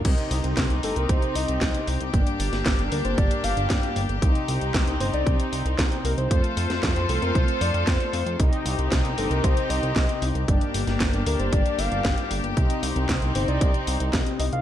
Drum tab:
CC |x---------------|----------------|----------------|----------------|
HH |xxoxxxoxxxoxxxox|xxoxxxoxxxoxxxox|xxoxxxoxxxoxxxox|xxoxxxoxxxoxxxox|
CP |----x-------x---|----x-------x---|----x-------x---|----x-------x---|
SD |----o-------o---|---oo-------o---|----o-------o---|---oo-------o---|
BD |o---o---o---o---|o---o---o---o---|o---o---o---o---|o---o---o---o---|

CC |----------------|----------------|----------------|
HH |xxoxxxoxxxoxxxox|xxoxxxoxxxoxxxox|xxoxxxoxxxoxxxox|
CP |----x-------x---|----x-------x---|----x-------x---|
SD |----o-------o---|---oo-------o---|----o-------o---|
BD |o---o---o---o---|o---o---o---o---|o---o---o---o---|